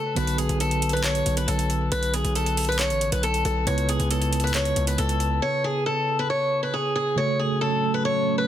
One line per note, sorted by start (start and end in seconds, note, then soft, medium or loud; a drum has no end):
0.00 0.12 C#3 medium
0.00 0.12 A3 medium
0.00 0.13 F#4 medium
0.00 0.15 A4 medium
0.15 0.48 B1 loud
0.15 3.62 D3 medium
0.15 3.63 B3 medium
0.15 3.63 F#4 medium
0.15 0.37 B4 medium
0.15 3.64 B4 medium
0.15 closed hi-hat medium
0.27 closed hi-hat medium
0.38 0.58 G#4 medium
0.38 closed hi-hat medium
0.49 1.23 B1 loud
0.49 closed hi-hat medium
0.60 0.91 A4 medium
0.60 closed hi-hat medium
0.71 closed hi-hat medium
0.82 closed hi-hat medium
0.89 1.03 B4 medium
0.89 closed hi-hat medium
0.97 closed hi-hat soft
1.04 1.35 C#5 loud
1.04 clap loud
1.04 closed hi-hat medium
1.15 closed hi-hat medium
1.26 1.47 B1 loud
1.26 closed hi-hat medium
1.37 1.47 B4 medium
1.37 closed hi-hat medium
1.48 1.90 B1 loud
1.48 1.89 A4 medium
1.48 closed hi-hat medium
1.59 closed hi-hat medium
1.70 closed hi-hat medium
1.92 2.23 B1 loud
1.92 2.12 B4 loud
1.92 closed hi-hat medium
2.03 closed hi-hat medium
2.14 2.34 G#4 medium
2.14 closed hi-hat medium
2.24 2.92 B1 loud
2.24 closed hi-hat medium
2.35 2.66 A4 medium
2.35 closed hi-hat medium
2.46 closed hi-hat medium
2.57 closed hi-hat medium
2.57 open hi-hat medium
2.65 2.79 B4 medium
2.65 closed hi-hat medium
2.72 closed hi-hat soft
2.79 3.10 C#5 medium
2.79 clap loud
2.79 closed hi-hat medium
2.90 3.11 A1 loud
2.90 closed hi-hat medium
3.01 closed hi-hat medium
3.12 3.44 B1 loud
3.12 3.22 B4 medium
3.12 closed hi-hat medium
3.23 3.43 A4 medium
3.23 closed hi-hat medium
3.34 closed hi-hat medium
3.45 3.66 B1 loud
3.45 3.65 A4 medium
3.45 closed hi-hat medium
3.65 3.98 C#2 loud
3.65 7.13 C#3 medium
3.65 7.13 B3 medium
3.65 7.13 E4 medium
3.65 7.14 B4 medium
3.65 3.87 C#5 loud
3.65 closed hi-hat medium
3.78 closed hi-hat medium
3.89 4.09 G#4 medium
3.89 closed hi-hat medium
4.00 4.73 C#2 loud
4.00 closed hi-hat medium
4.11 4.42 A4 medium
4.11 closed hi-hat medium
4.22 closed hi-hat medium
4.33 closed hi-hat medium
4.40 4.54 B4 medium
4.40 closed hi-hat medium
4.47 closed hi-hat soft
4.54 4.85 C#5 medium
4.54 clap loud
4.54 closed hi-hat medium
4.65 closed hi-hat medium
4.76 4.97 C#2 loud
4.76 closed hi-hat medium
4.87 4.97 B4 medium
4.87 closed hi-hat medium
4.98 5.40 C#2 loud
4.98 5.39 A4 medium
4.98 closed hi-hat medium
5.09 closed hi-hat medium
5.20 closed hi-hat soft
5.42 5.62 C#5 loud
5.64 5.84 G#4 medium
5.86 6.17 A4 medium
6.19 6.29 B4 medium
6.30 6.61 C#5 medium
6.63 6.73 B4 medium
6.74 6.94 G#4 medium
6.96 7.16 G#4 medium
7.16 8.47 C#3 medium
7.16 8.47 F#3 medium
7.16 8.47 A3 medium
7.16 8.47 C#4 medium
7.16 8.47 F#4 medium
7.16 8.47 A4 medium
7.16 7.38 C#5 loud
7.39 7.59 G#4 medium
7.61 7.92 A4 medium
7.94 8.04 B4 medium
8.05 8.36 C#5 medium
8.38 8.47 B4 medium